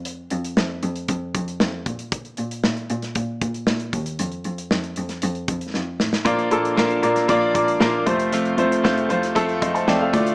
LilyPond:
<<
  \new Staff \with { instrumentName = "Upright piano" } { \time 4/4 \key f \mixolydian \tempo 4 = 116 << { r1 | r1 | r1 | r1 |
r2 r8 <ees'' c'''>16 <c'' a''>16 <d'' g''>16 <a' f''>8 r16 | } \\ { r1 | r1 | r1 | <bes f' d''>8 <bes f' a'>8 <bes f' bes'>8 <bes f' d''>8 <bes f' d''>8 <bes f' d''>8 <bes f' bes'>8 <a f' c''>8~ |
<a f' c''>8 <a f' c''>8 <a f' c''>8 <a f' c''>8 <a f' a'>8 r4 <a f' d''>8 | } >> }
  \new Staff \with { instrumentName = "Upright piano" } { \clef bass \time 4/4 \key f \mixolydian r1 | r1 | r1 | <bes, f>4. r2 c8~ |
c4 r2 r8 a,8 | }
  \new Staff \with { instrumentName = "Clean electric guitar" } { \time 4/4 \key f \mixolydian r1 | r1 | r1 | <bes, f bes d' f'>8 <bes d' f'>8 <bes, f bes d' f'>8 <bes d' f'>8 <f bes d' f'>4 <bes, f bes d' f'>8 <f a c' f'>8 |
<f, c f a c' f'>8 <f a c' f'>8 <f, c f a c' f'>8 <f a c' f'>8 <f a c' f'>4 <f, c f a c' f'>8 <a d' f'>8 | }
  \new Staff \with { instrumentName = "Cello" } { \clef bass \time 4/4 \key f \mixolydian f,8 f,8 f,8 f,8 f,8 f,8 f,8 bes,8~ | bes,8 bes,8 bes,8 bes,8 bes,8 bes,8 bes,8 ees,8 | f,8 f,8 f,8 f,8 f,8 f,8 f,8 a,8 | bes,8 bes,8 bes,8 bes,8 bes,8 bes,8 bes,8 f,8~ |
f,8 f,8 f,8 f,8 f,8 f,8 f,8 d,8 | }
  \new DrumStaff \with { instrumentName = "Drums" } \drummode { \time 4/4 hh8 hh16 hh16 sn8 hh16 hh16 <hh bd>8 <hh bd>16 hh16 sn8 <hh bd>16 hh16 | <hh bd>16 hh16 hh16 hh16 sn16 hh16 hh16 <hh sn>16 <hh bd>8 <hh bd>16 hh16 sn16 hh16 <hh bd>16 hh16 | hh16 hh16 hh16 hh16 sn16 hh16 hh16 <hh sn>16 hh16 hh16 <hh bd>16 hh16 sn8 sn16 sn16 | <hh bd>16 hh16 hh16 hh16 sn16 hh16 hh16 <hh sn>16 <hh bd>8 <hh bd>16 hh16 sn8 <hh bd>16 hh16 |
hh16 hh16 hh16 hh16 sn16 hh16 hh16 <hh sn>16 <hh bd>16 hh16 <hh bd>16 hh16 sn8 <hh bd>16 hh16 | }
>>